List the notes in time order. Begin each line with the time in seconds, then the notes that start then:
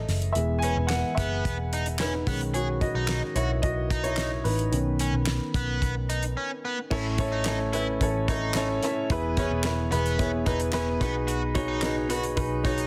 Already playing: E3 A3 C#4 E4 G#4 A4 C#5 D#5 E5
0.08 F#1, snare, open hi-hat
0.22 closed hi-hat
0.32 E1 E3 G#3 B3 E5, closed hi-hat
0.37 G#4
0.58 G#5, closed hi-hat
0.63 C#4 B4
0.77 E1
0.87 F#5, snare, clap, closed hi-hat
0.91 B4
1.15 F#1 B3 G#4 E5, kick, closed hi-hat
1.45 E1, kick, closed hi-hat
1.73 D#4, closed hi-hat
1.86 closed hi-hat
1.99 C#4 D#4 B4, snare, clap, closed hi-hat
2.27 B1 D#3 G#3 B3 C#4, kick, open hi-hat
2.41 closed hi-hat
2.54 F#4 G#4 C#5, closed hi-hat
2.81 F#4 D#5, kick, closed hi-hat
2.94 B1 D#4
3.08 snare, clap, closed hi-hat
3.35 B1 E4 F#4 C#5, closed hi-hat
3.62 B1 F#4 D#5, kick, closed hi-hat
3.90 D#4, kick, closed hi-hat
4.04 E4 C#5, closed hi-hat
4.17 snare, clap, closed hi-hat
4.44 A1 D#4 B4, open hi-hat
4.59 closed hi-hat
4.71 B1 D#3 B3 C#4, closed hi-hat
4.99 C#4, closed hi-hat
5.13 B1
5.26 snare, clap, closed hi-hat
5.54 B1 B3, kick, closed hi-hat
5.82 B1, kick, closed hi-hat
6.09 D#4, closed hi-hat
6.23 closed hi-hat
6.37 C#4
6.65 B3
6.90 A1 A2 C#4 E4 A4 C#5, kick, crash
7.18 C#4 E4 A4 C#5, kick, closed hi-hat
7.32 D#4
7.45 C#4 E4 A4 C#5, snare, clap, closed hi-hat
7.73 C#4 E4 A4 B4, closed hi-hat
8.01 A1 C#4 E4 A4 C#5, kick, closed hi-hat
8.28 C#4 D#4 E4 A4 C#5, kick, closed hi-hat
8.54 C#4 E4 A4 C#5, snare, clap, closed hi-hat
8.82 C#4 E4 A4 E5, snare, closed hi-hat
9.10 E1 E3 B3 E4 G#4 B4, kick, closed hi-hat
9.37 B3 C#4 E4 G#4 C#5, kick, closed hi-hat
9.51 E1
9.64 B3 E4 G#4 B4, snare, clap, closed hi-hat
9.91 E1 B3 E4 G#4 B4, closed hi-hat
10.06 closed hi-hat
10.18 B3 E4 G#4 C#5, kick, closed hi-hat
10.46 E1 B3 D#4 E4 G#4 B4, kick, closed hi-hat
10.60 closed hi-hat
10.72 B3 C#4 E4 G#4 B4, snare, clap, closed hi-hat
11.00 B1 B2 B3 D#4 F#4 G#4 B4, kick, snare, closed hi-hat
11.28 F#4, closed hi-hat
11.55 D#4 F#4 G#4 C#5, kick, closed hi-hat
11.68 D#4
11.82 D#4 F#4 G#4 B4, snare, clap, closed hi-hat
12.09 D#4 F#4 G#4 B4, closed hi-hat
12.23 closed hi-hat
12.36 B1 D#4 F#4 G#4 B4, kick, closed hi-hat
12.64 D#4 F#4 G#4 C#5, kick, closed hi-hat
12.78 closed hi-hat